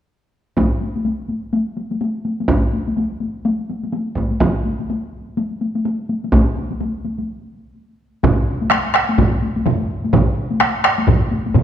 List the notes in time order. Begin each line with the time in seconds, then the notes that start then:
0.57 taiko, taiko high
0.80 taiko high
0.96 taiko high
1.05 taiko high
1.29 taiko high
1.53 taiko high
1.77 taiko high
1.91 taiko high
2.01 taiko high
2.25 taiko high
2.40 taiko high
2.48 taiko, taiko high
2.73 taiko high
2.88 taiko high
2.97 taiko high
3.20 taiko high
3.45 taiko high
3.70 taiko high
3.83 taiko high
3.93 taiko high
4.17 taiko, taiko high
4.31 taiko high
4.41 taiko, taiko high
4.66 taiko high
4.80 taiko high
4.90 taiko high
5.37 taiko high
5.61 taiko high
5.75 taiko high
5.85 taiko high
6.09 taiko high
6.24 taiko high
6.32 taiko, taiko high
6.57 taiko high
6.70 taiko high
6.81 taiko high
7.05 taiko high
7.19 taiko high
8.23 taiko, taiko low-mid, taiko mid, taiko high
8.61 taiko high
8.70 taiko rim, taiko high
8.94 taiko rim
9.09 taiko high
9.18 taiko, taiko low-mid, taiko mid, taiko high
9.42 taiko high
9.56 taiko high
9.66 taiko low-mid, taiko mid, taiko high
10.04 taiko high
10.13 taiko, taiko low-mid, taiko mid, taiko high
10.50 taiko high
10.60 taiko rim, taiko high
10.84 taiko rim
10.98 taiko high
11.08 taiko, taiko low-mid, taiko mid, taiko high
11.31 taiko high
11.46 taiko high
11.55 taiko low-mid, taiko mid, taiko high